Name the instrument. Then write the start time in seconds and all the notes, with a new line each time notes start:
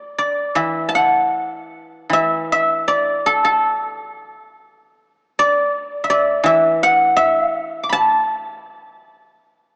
guzheng
Already playing: D5
0.18 D5
0.55 E3 E5
0.89 A5
0.95 F#5
2.10 E3 E5
2.52 E5
2.88 D5
3.26 A4
3.45 A4
5.39 D5
6.04 E5
6.10 D5
6.43 E3 E5
6.83 F#5
7.16 E5
7.83 D6
7.89 A5 B5